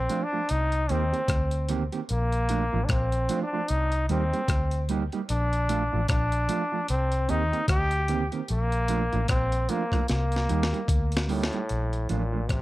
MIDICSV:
0, 0, Header, 1, 5, 480
1, 0, Start_track
1, 0, Key_signature, -2, "major"
1, 0, Tempo, 800000
1, 1254, Time_signature, 4, 2, 24, 8
1, 7571, End_track
2, 0, Start_track
2, 0, Title_t, "Trombone"
2, 0, Program_c, 0, 57
2, 0, Note_on_c, 0, 60, 102
2, 141, Note_on_c, 0, 62, 95
2, 150, Note_off_c, 0, 60, 0
2, 304, Note_on_c, 0, 63, 110
2, 313, Note_off_c, 0, 62, 0
2, 545, Note_on_c, 0, 60, 96
2, 554, Note_off_c, 0, 63, 0
2, 1019, Note_off_c, 0, 60, 0
2, 1265, Note_on_c, 0, 58, 98
2, 1707, Note_on_c, 0, 62, 68
2, 1716, Note_off_c, 0, 58, 0
2, 1742, Note_on_c, 0, 60, 103
2, 1751, Note_off_c, 0, 62, 0
2, 2057, Note_off_c, 0, 60, 0
2, 2061, Note_on_c, 0, 62, 95
2, 2222, Note_on_c, 0, 63, 111
2, 2231, Note_off_c, 0, 62, 0
2, 2456, Note_off_c, 0, 63, 0
2, 2459, Note_on_c, 0, 60, 92
2, 2912, Note_off_c, 0, 60, 0
2, 3180, Note_on_c, 0, 62, 100
2, 3633, Note_off_c, 0, 62, 0
2, 3658, Note_on_c, 0, 62, 103
2, 4111, Note_off_c, 0, 62, 0
2, 4141, Note_on_c, 0, 60, 99
2, 4380, Note_on_c, 0, 63, 107
2, 4389, Note_off_c, 0, 60, 0
2, 4613, Note_off_c, 0, 63, 0
2, 4617, Note_on_c, 0, 67, 117
2, 4972, Note_off_c, 0, 67, 0
2, 5097, Note_on_c, 0, 58, 102
2, 5551, Note_off_c, 0, 58, 0
2, 5576, Note_on_c, 0, 60, 99
2, 5818, Note_on_c, 0, 58, 86
2, 5827, Note_off_c, 0, 60, 0
2, 6054, Note_off_c, 0, 58, 0
2, 6057, Note_on_c, 0, 58, 87
2, 6752, Note_off_c, 0, 58, 0
2, 6779, Note_on_c, 0, 45, 91
2, 7233, Note_off_c, 0, 45, 0
2, 7262, Note_on_c, 0, 46, 77
2, 7499, Note_on_c, 0, 48, 87
2, 7508, Note_off_c, 0, 46, 0
2, 7571, Note_off_c, 0, 48, 0
2, 7571, End_track
3, 0, Start_track
3, 0, Title_t, "Clean electric guitar"
3, 0, Program_c, 1, 27
3, 56, Note_on_c, 1, 53, 86
3, 58, Note_on_c, 1, 57, 91
3, 61, Note_on_c, 1, 62, 87
3, 65, Note_on_c, 1, 65, 93
3, 132, Note_off_c, 1, 53, 0
3, 134, Note_off_c, 1, 57, 0
3, 135, Note_off_c, 1, 62, 0
3, 137, Note_off_c, 1, 65, 0
3, 196, Note_on_c, 1, 65, 65
3, 198, Note_on_c, 1, 62, 55
3, 202, Note_on_c, 1, 57, 58
3, 204, Note_on_c, 1, 53, 52
3, 238, Note_off_c, 1, 65, 0
3, 239, Note_off_c, 1, 62, 0
3, 241, Note_off_c, 1, 57, 0
3, 242, Note_off_c, 1, 53, 0
3, 537, Note_on_c, 1, 51, 84
3, 541, Note_on_c, 1, 58, 95
3, 543, Note_on_c, 1, 60, 91
3, 546, Note_on_c, 1, 67, 92
3, 613, Note_off_c, 1, 51, 0
3, 615, Note_off_c, 1, 58, 0
3, 616, Note_off_c, 1, 60, 0
3, 618, Note_off_c, 1, 67, 0
3, 675, Note_on_c, 1, 67, 58
3, 680, Note_on_c, 1, 60, 57
3, 681, Note_on_c, 1, 58, 54
3, 684, Note_on_c, 1, 51, 48
3, 718, Note_off_c, 1, 67, 0
3, 720, Note_off_c, 1, 60, 0
3, 721, Note_off_c, 1, 58, 0
3, 722, Note_off_c, 1, 51, 0
3, 1014, Note_on_c, 1, 51, 81
3, 1016, Note_on_c, 1, 58, 90
3, 1020, Note_on_c, 1, 60, 83
3, 1023, Note_on_c, 1, 67, 95
3, 1091, Note_off_c, 1, 51, 0
3, 1092, Note_off_c, 1, 58, 0
3, 1094, Note_off_c, 1, 60, 0
3, 1096, Note_off_c, 1, 67, 0
3, 1155, Note_on_c, 1, 67, 68
3, 1157, Note_on_c, 1, 60, 63
3, 1161, Note_on_c, 1, 58, 57
3, 1163, Note_on_c, 1, 51, 54
3, 1197, Note_off_c, 1, 67, 0
3, 1199, Note_off_c, 1, 60, 0
3, 1200, Note_off_c, 1, 58, 0
3, 1201, Note_off_c, 1, 51, 0
3, 1497, Note_on_c, 1, 53, 92
3, 1499, Note_on_c, 1, 57, 91
3, 1504, Note_on_c, 1, 62, 93
3, 1506, Note_on_c, 1, 65, 92
3, 1573, Note_off_c, 1, 53, 0
3, 1574, Note_off_c, 1, 57, 0
3, 1576, Note_off_c, 1, 62, 0
3, 1577, Note_off_c, 1, 65, 0
3, 1635, Note_on_c, 1, 65, 67
3, 1640, Note_on_c, 1, 62, 62
3, 1643, Note_on_c, 1, 57, 62
3, 1645, Note_on_c, 1, 53, 55
3, 1677, Note_off_c, 1, 65, 0
3, 1680, Note_off_c, 1, 62, 0
3, 1681, Note_off_c, 1, 57, 0
3, 1683, Note_off_c, 1, 53, 0
3, 1975, Note_on_c, 1, 53, 85
3, 1978, Note_on_c, 1, 57, 90
3, 1981, Note_on_c, 1, 62, 89
3, 1984, Note_on_c, 1, 65, 91
3, 2052, Note_off_c, 1, 53, 0
3, 2053, Note_off_c, 1, 57, 0
3, 2055, Note_off_c, 1, 62, 0
3, 2056, Note_off_c, 1, 65, 0
3, 2117, Note_on_c, 1, 65, 66
3, 2120, Note_on_c, 1, 62, 72
3, 2123, Note_on_c, 1, 57, 59
3, 2125, Note_on_c, 1, 53, 53
3, 2158, Note_off_c, 1, 65, 0
3, 2160, Note_off_c, 1, 62, 0
3, 2161, Note_off_c, 1, 57, 0
3, 2162, Note_off_c, 1, 53, 0
3, 2457, Note_on_c, 1, 55, 89
3, 2461, Note_on_c, 1, 58, 92
3, 2463, Note_on_c, 1, 63, 88
3, 2466, Note_on_c, 1, 67, 94
3, 2532, Note_off_c, 1, 55, 0
3, 2534, Note_off_c, 1, 58, 0
3, 2535, Note_off_c, 1, 63, 0
3, 2537, Note_off_c, 1, 67, 0
3, 2598, Note_on_c, 1, 67, 62
3, 2602, Note_on_c, 1, 63, 59
3, 2605, Note_on_c, 1, 58, 59
3, 2607, Note_on_c, 1, 55, 55
3, 2639, Note_off_c, 1, 67, 0
3, 2640, Note_off_c, 1, 63, 0
3, 2642, Note_off_c, 1, 58, 0
3, 2643, Note_off_c, 1, 55, 0
3, 2937, Note_on_c, 1, 55, 87
3, 2940, Note_on_c, 1, 58, 91
3, 2943, Note_on_c, 1, 63, 98
3, 2946, Note_on_c, 1, 67, 99
3, 3012, Note_off_c, 1, 55, 0
3, 3014, Note_off_c, 1, 58, 0
3, 3015, Note_off_c, 1, 63, 0
3, 3017, Note_off_c, 1, 67, 0
3, 3078, Note_on_c, 1, 67, 70
3, 3080, Note_on_c, 1, 63, 64
3, 3084, Note_on_c, 1, 58, 62
3, 3086, Note_on_c, 1, 55, 61
3, 3118, Note_off_c, 1, 67, 0
3, 3119, Note_off_c, 1, 63, 0
3, 3122, Note_off_c, 1, 55, 0
3, 3122, Note_off_c, 1, 58, 0
3, 3414, Note_on_c, 1, 53, 86
3, 3417, Note_on_c, 1, 57, 94
3, 3421, Note_on_c, 1, 62, 91
3, 3423, Note_on_c, 1, 65, 86
3, 3491, Note_off_c, 1, 53, 0
3, 3493, Note_off_c, 1, 57, 0
3, 3494, Note_off_c, 1, 62, 0
3, 3495, Note_off_c, 1, 65, 0
3, 3555, Note_on_c, 1, 65, 67
3, 3558, Note_on_c, 1, 62, 69
3, 3560, Note_on_c, 1, 57, 56
3, 3562, Note_on_c, 1, 53, 52
3, 3597, Note_off_c, 1, 65, 0
3, 3598, Note_off_c, 1, 62, 0
3, 3599, Note_off_c, 1, 57, 0
3, 3601, Note_off_c, 1, 53, 0
3, 3890, Note_on_c, 1, 53, 84
3, 3895, Note_on_c, 1, 57, 88
3, 3898, Note_on_c, 1, 62, 102
3, 3901, Note_on_c, 1, 65, 91
3, 3969, Note_off_c, 1, 53, 0
3, 3971, Note_off_c, 1, 57, 0
3, 3973, Note_off_c, 1, 62, 0
3, 3974, Note_off_c, 1, 65, 0
3, 4031, Note_on_c, 1, 65, 60
3, 4036, Note_on_c, 1, 62, 61
3, 4039, Note_on_c, 1, 57, 53
3, 4041, Note_on_c, 1, 53, 50
3, 4075, Note_off_c, 1, 65, 0
3, 4077, Note_off_c, 1, 62, 0
3, 4079, Note_off_c, 1, 57, 0
3, 4080, Note_off_c, 1, 53, 0
3, 4370, Note_on_c, 1, 51, 86
3, 4374, Note_on_c, 1, 58, 85
3, 4377, Note_on_c, 1, 60, 99
3, 4380, Note_on_c, 1, 67, 93
3, 4449, Note_off_c, 1, 51, 0
3, 4451, Note_off_c, 1, 58, 0
3, 4452, Note_off_c, 1, 60, 0
3, 4454, Note_off_c, 1, 67, 0
3, 4514, Note_on_c, 1, 67, 56
3, 4518, Note_on_c, 1, 60, 55
3, 4520, Note_on_c, 1, 58, 52
3, 4522, Note_on_c, 1, 51, 49
3, 4557, Note_off_c, 1, 67, 0
3, 4559, Note_off_c, 1, 60, 0
3, 4560, Note_off_c, 1, 58, 0
3, 4561, Note_off_c, 1, 51, 0
3, 4852, Note_on_c, 1, 51, 85
3, 4856, Note_on_c, 1, 58, 91
3, 4860, Note_on_c, 1, 60, 89
3, 4862, Note_on_c, 1, 67, 98
3, 4930, Note_off_c, 1, 51, 0
3, 4932, Note_off_c, 1, 58, 0
3, 4934, Note_off_c, 1, 60, 0
3, 4935, Note_off_c, 1, 67, 0
3, 4993, Note_on_c, 1, 67, 65
3, 4996, Note_on_c, 1, 60, 64
3, 4999, Note_on_c, 1, 58, 55
3, 5002, Note_on_c, 1, 51, 58
3, 5036, Note_off_c, 1, 67, 0
3, 5038, Note_off_c, 1, 60, 0
3, 5039, Note_off_c, 1, 58, 0
3, 5041, Note_off_c, 1, 51, 0
3, 5333, Note_on_c, 1, 53, 90
3, 5336, Note_on_c, 1, 57, 93
3, 5339, Note_on_c, 1, 62, 94
3, 5341, Note_on_c, 1, 65, 96
3, 5410, Note_off_c, 1, 53, 0
3, 5412, Note_off_c, 1, 57, 0
3, 5413, Note_off_c, 1, 62, 0
3, 5414, Note_off_c, 1, 65, 0
3, 5475, Note_on_c, 1, 65, 68
3, 5479, Note_on_c, 1, 62, 64
3, 5481, Note_on_c, 1, 57, 54
3, 5485, Note_on_c, 1, 53, 52
3, 5517, Note_off_c, 1, 65, 0
3, 5519, Note_off_c, 1, 62, 0
3, 5520, Note_off_c, 1, 57, 0
3, 5522, Note_off_c, 1, 53, 0
3, 5815, Note_on_c, 1, 53, 82
3, 5817, Note_on_c, 1, 57, 85
3, 5820, Note_on_c, 1, 62, 91
3, 5824, Note_on_c, 1, 65, 100
3, 5891, Note_off_c, 1, 53, 0
3, 5893, Note_off_c, 1, 57, 0
3, 5894, Note_off_c, 1, 62, 0
3, 5896, Note_off_c, 1, 65, 0
3, 5957, Note_on_c, 1, 65, 64
3, 5961, Note_on_c, 1, 62, 55
3, 5962, Note_on_c, 1, 57, 60
3, 5966, Note_on_c, 1, 53, 53
3, 5998, Note_off_c, 1, 65, 0
3, 6000, Note_off_c, 1, 62, 0
3, 6001, Note_off_c, 1, 57, 0
3, 6002, Note_off_c, 1, 53, 0
3, 6294, Note_on_c, 1, 55, 87
3, 6297, Note_on_c, 1, 58, 82
3, 6299, Note_on_c, 1, 63, 87
3, 6302, Note_on_c, 1, 67, 82
3, 6371, Note_off_c, 1, 55, 0
3, 6373, Note_off_c, 1, 58, 0
3, 6374, Note_off_c, 1, 63, 0
3, 6375, Note_off_c, 1, 67, 0
3, 6434, Note_on_c, 1, 67, 61
3, 6438, Note_on_c, 1, 63, 53
3, 6440, Note_on_c, 1, 58, 50
3, 6443, Note_on_c, 1, 55, 50
3, 6477, Note_off_c, 1, 67, 0
3, 6479, Note_off_c, 1, 63, 0
3, 6480, Note_off_c, 1, 58, 0
3, 6481, Note_off_c, 1, 55, 0
3, 6773, Note_on_c, 1, 55, 83
3, 6775, Note_on_c, 1, 58, 85
3, 6779, Note_on_c, 1, 63, 89
3, 6781, Note_on_c, 1, 67, 91
3, 6851, Note_off_c, 1, 55, 0
3, 6852, Note_off_c, 1, 58, 0
3, 6854, Note_off_c, 1, 63, 0
3, 6855, Note_off_c, 1, 67, 0
3, 6912, Note_on_c, 1, 67, 63
3, 6916, Note_on_c, 1, 63, 63
3, 6919, Note_on_c, 1, 58, 57
3, 6921, Note_on_c, 1, 55, 54
3, 6956, Note_off_c, 1, 67, 0
3, 6958, Note_off_c, 1, 63, 0
3, 6960, Note_off_c, 1, 58, 0
3, 6961, Note_off_c, 1, 55, 0
3, 7254, Note_on_c, 1, 53, 75
3, 7258, Note_on_c, 1, 57, 84
3, 7261, Note_on_c, 1, 62, 84
3, 7263, Note_on_c, 1, 65, 90
3, 7332, Note_off_c, 1, 53, 0
3, 7334, Note_off_c, 1, 57, 0
3, 7335, Note_off_c, 1, 62, 0
3, 7336, Note_off_c, 1, 65, 0
3, 7395, Note_on_c, 1, 65, 58
3, 7398, Note_on_c, 1, 62, 60
3, 7401, Note_on_c, 1, 57, 58
3, 7404, Note_on_c, 1, 53, 50
3, 7438, Note_off_c, 1, 65, 0
3, 7439, Note_off_c, 1, 62, 0
3, 7441, Note_off_c, 1, 57, 0
3, 7442, Note_off_c, 1, 53, 0
3, 7571, End_track
4, 0, Start_track
4, 0, Title_t, "Fingered electric bass"
4, 0, Program_c, 2, 33
4, 304, Note_on_c, 2, 36, 100
4, 523, Note_off_c, 2, 36, 0
4, 544, Note_on_c, 2, 39, 98
4, 671, Note_off_c, 2, 39, 0
4, 774, Note_on_c, 2, 38, 90
4, 1131, Note_off_c, 2, 38, 0
4, 1263, Note_on_c, 2, 34, 106
4, 1615, Note_off_c, 2, 34, 0
4, 1643, Note_on_c, 2, 33, 91
4, 1731, Note_off_c, 2, 33, 0
4, 1738, Note_on_c, 2, 34, 99
4, 1960, Note_off_c, 2, 34, 0
4, 2222, Note_on_c, 2, 36, 99
4, 2441, Note_off_c, 2, 36, 0
4, 2458, Note_on_c, 2, 39, 94
4, 2587, Note_off_c, 2, 39, 0
4, 2694, Note_on_c, 2, 38, 96
4, 3050, Note_off_c, 2, 38, 0
4, 3180, Note_on_c, 2, 34, 111
4, 3533, Note_off_c, 2, 34, 0
4, 3562, Note_on_c, 2, 33, 93
4, 3651, Note_off_c, 2, 33, 0
4, 3657, Note_on_c, 2, 34, 95
4, 3879, Note_off_c, 2, 34, 0
4, 4140, Note_on_c, 2, 36, 104
4, 4360, Note_off_c, 2, 36, 0
4, 4382, Note_on_c, 2, 39, 93
4, 4509, Note_off_c, 2, 39, 0
4, 4612, Note_on_c, 2, 38, 91
4, 4969, Note_off_c, 2, 38, 0
4, 5102, Note_on_c, 2, 34, 99
4, 5454, Note_off_c, 2, 34, 0
4, 5482, Note_on_c, 2, 33, 88
4, 5571, Note_off_c, 2, 33, 0
4, 5577, Note_on_c, 2, 34, 95
4, 5799, Note_off_c, 2, 34, 0
4, 6062, Note_on_c, 2, 36, 101
4, 6282, Note_off_c, 2, 36, 0
4, 6302, Note_on_c, 2, 39, 95
4, 6429, Note_off_c, 2, 39, 0
4, 6534, Note_on_c, 2, 38, 97
4, 6891, Note_off_c, 2, 38, 0
4, 7023, Note_on_c, 2, 34, 87
4, 7243, Note_off_c, 2, 34, 0
4, 7263, Note_on_c, 2, 33, 77
4, 7483, Note_off_c, 2, 33, 0
4, 7500, Note_on_c, 2, 33, 90
4, 7571, Note_off_c, 2, 33, 0
4, 7571, End_track
5, 0, Start_track
5, 0, Title_t, "Drums"
5, 57, Note_on_c, 9, 42, 87
5, 117, Note_off_c, 9, 42, 0
5, 293, Note_on_c, 9, 42, 99
5, 353, Note_off_c, 9, 42, 0
5, 432, Note_on_c, 9, 42, 49
5, 492, Note_off_c, 9, 42, 0
5, 535, Note_on_c, 9, 42, 65
5, 595, Note_off_c, 9, 42, 0
5, 681, Note_on_c, 9, 42, 34
5, 741, Note_off_c, 9, 42, 0
5, 769, Note_on_c, 9, 36, 116
5, 770, Note_on_c, 9, 42, 109
5, 778, Note_on_c, 9, 37, 106
5, 829, Note_off_c, 9, 36, 0
5, 830, Note_off_c, 9, 42, 0
5, 838, Note_off_c, 9, 37, 0
5, 907, Note_on_c, 9, 42, 60
5, 967, Note_off_c, 9, 42, 0
5, 1011, Note_on_c, 9, 42, 78
5, 1071, Note_off_c, 9, 42, 0
5, 1154, Note_on_c, 9, 42, 39
5, 1214, Note_off_c, 9, 42, 0
5, 1253, Note_on_c, 9, 42, 96
5, 1313, Note_off_c, 9, 42, 0
5, 1394, Note_on_c, 9, 42, 49
5, 1454, Note_off_c, 9, 42, 0
5, 1493, Note_on_c, 9, 42, 78
5, 1553, Note_off_c, 9, 42, 0
5, 1732, Note_on_c, 9, 42, 85
5, 1734, Note_on_c, 9, 36, 103
5, 1738, Note_on_c, 9, 37, 121
5, 1792, Note_off_c, 9, 42, 0
5, 1794, Note_off_c, 9, 36, 0
5, 1798, Note_off_c, 9, 37, 0
5, 1874, Note_on_c, 9, 42, 54
5, 1934, Note_off_c, 9, 42, 0
5, 1974, Note_on_c, 9, 42, 92
5, 2034, Note_off_c, 9, 42, 0
5, 2210, Note_on_c, 9, 42, 100
5, 2270, Note_off_c, 9, 42, 0
5, 2350, Note_on_c, 9, 42, 50
5, 2410, Note_off_c, 9, 42, 0
5, 2455, Note_on_c, 9, 42, 64
5, 2515, Note_off_c, 9, 42, 0
5, 2601, Note_on_c, 9, 42, 34
5, 2661, Note_off_c, 9, 42, 0
5, 2689, Note_on_c, 9, 36, 120
5, 2691, Note_on_c, 9, 42, 105
5, 2698, Note_on_c, 9, 37, 111
5, 2749, Note_off_c, 9, 36, 0
5, 2751, Note_off_c, 9, 42, 0
5, 2758, Note_off_c, 9, 37, 0
5, 2828, Note_on_c, 9, 42, 55
5, 2888, Note_off_c, 9, 42, 0
5, 2933, Note_on_c, 9, 42, 76
5, 2993, Note_off_c, 9, 42, 0
5, 3075, Note_on_c, 9, 42, 37
5, 3135, Note_off_c, 9, 42, 0
5, 3174, Note_on_c, 9, 42, 97
5, 3234, Note_off_c, 9, 42, 0
5, 3317, Note_on_c, 9, 42, 47
5, 3377, Note_off_c, 9, 42, 0
5, 3415, Note_on_c, 9, 42, 88
5, 3475, Note_off_c, 9, 42, 0
5, 3651, Note_on_c, 9, 42, 90
5, 3653, Note_on_c, 9, 36, 109
5, 3657, Note_on_c, 9, 37, 113
5, 3711, Note_off_c, 9, 42, 0
5, 3713, Note_off_c, 9, 36, 0
5, 3717, Note_off_c, 9, 37, 0
5, 3792, Note_on_c, 9, 42, 58
5, 3852, Note_off_c, 9, 42, 0
5, 3893, Note_on_c, 9, 42, 91
5, 3953, Note_off_c, 9, 42, 0
5, 4131, Note_on_c, 9, 42, 105
5, 4191, Note_off_c, 9, 42, 0
5, 4270, Note_on_c, 9, 42, 51
5, 4330, Note_off_c, 9, 42, 0
5, 4373, Note_on_c, 9, 42, 66
5, 4433, Note_off_c, 9, 42, 0
5, 4520, Note_on_c, 9, 42, 34
5, 4580, Note_off_c, 9, 42, 0
5, 4608, Note_on_c, 9, 36, 117
5, 4608, Note_on_c, 9, 42, 113
5, 4616, Note_on_c, 9, 37, 110
5, 4668, Note_off_c, 9, 36, 0
5, 4668, Note_off_c, 9, 42, 0
5, 4676, Note_off_c, 9, 37, 0
5, 4745, Note_on_c, 9, 42, 60
5, 4805, Note_off_c, 9, 42, 0
5, 4850, Note_on_c, 9, 42, 75
5, 4910, Note_off_c, 9, 42, 0
5, 4992, Note_on_c, 9, 42, 38
5, 5052, Note_off_c, 9, 42, 0
5, 5090, Note_on_c, 9, 42, 94
5, 5150, Note_off_c, 9, 42, 0
5, 5233, Note_on_c, 9, 42, 48
5, 5293, Note_off_c, 9, 42, 0
5, 5330, Note_on_c, 9, 42, 86
5, 5390, Note_off_c, 9, 42, 0
5, 5475, Note_on_c, 9, 42, 34
5, 5535, Note_off_c, 9, 42, 0
5, 5570, Note_on_c, 9, 42, 93
5, 5573, Note_on_c, 9, 36, 106
5, 5576, Note_on_c, 9, 37, 115
5, 5630, Note_off_c, 9, 42, 0
5, 5633, Note_off_c, 9, 36, 0
5, 5636, Note_off_c, 9, 37, 0
5, 5713, Note_on_c, 9, 42, 56
5, 5773, Note_off_c, 9, 42, 0
5, 5813, Note_on_c, 9, 42, 90
5, 5873, Note_off_c, 9, 42, 0
5, 5951, Note_on_c, 9, 36, 73
5, 5957, Note_on_c, 9, 37, 74
5, 5959, Note_on_c, 9, 42, 38
5, 6011, Note_off_c, 9, 36, 0
5, 6017, Note_off_c, 9, 37, 0
5, 6019, Note_off_c, 9, 42, 0
5, 6050, Note_on_c, 9, 42, 98
5, 6057, Note_on_c, 9, 38, 63
5, 6110, Note_off_c, 9, 42, 0
5, 6117, Note_off_c, 9, 38, 0
5, 6191, Note_on_c, 9, 42, 48
5, 6218, Note_on_c, 9, 38, 60
5, 6251, Note_off_c, 9, 42, 0
5, 6278, Note_off_c, 9, 38, 0
5, 6296, Note_on_c, 9, 42, 62
5, 6356, Note_off_c, 9, 42, 0
5, 6380, Note_on_c, 9, 38, 82
5, 6440, Note_off_c, 9, 38, 0
5, 6444, Note_on_c, 9, 42, 38
5, 6504, Note_off_c, 9, 42, 0
5, 6530, Note_on_c, 9, 36, 116
5, 6534, Note_on_c, 9, 42, 113
5, 6590, Note_off_c, 9, 36, 0
5, 6594, Note_off_c, 9, 42, 0
5, 6671, Note_on_c, 9, 42, 58
5, 6700, Note_on_c, 9, 38, 106
5, 6731, Note_off_c, 9, 42, 0
5, 6760, Note_off_c, 9, 38, 0
5, 6775, Note_on_c, 9, 46, 73
5, 6835, Note_off_c, 9, 46, 0
5, 6861, Note_on_c, 9, 38, 96
5, 6916, Note_on_c, 9, 42, 37
5, 6921, Note_off_c, 9, 38, 0
5, 6976, Note_off_c, 9, 42, 0
5, 7016, Note_on_c, 9, 42, 79
5, 7076, Note_off_c, 9, 42, 0
5, 7158, Note_on_c, 9, 42, 46
5, 7218, Note_off_c, 9, 42, 0
5, 7255, Note_on_c, 9, 42, 75
5, 7315, Note_off_c, 9, 42, 0
5, 7496, Note_on_c, 9, 36, 103
5, 7496, Note_on_c, 9, 42, 81
5, 7502, Note_on_c, 9, 37, 103
5, 7556, Note_off_c, 9, 36, 0
5, 7556, Note_off_c, 9, 42, 0
5, 7562, Note_off_c, 9, 37, 0
5, 7571, End_track
0, 0, End_of_file